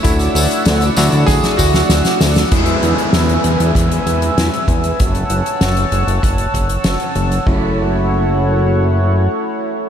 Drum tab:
CC |----------------|x---------------|----------------|x---------------|
HH |xxoxxxoxxxoxxxox|xxxxxxxxxxxxxxxx|xxxxxxxxxxxxxxxx|----------------|
TB |xxxxxxxxx-xxxxxx|----------------|----------------|----------------|
SD |----o-o-oo-ooooo|----o-------o---|----o-------o---|----------------|
BD |o-------o-o-----|o-------o-----o-|o-------o-o-----|o---------------|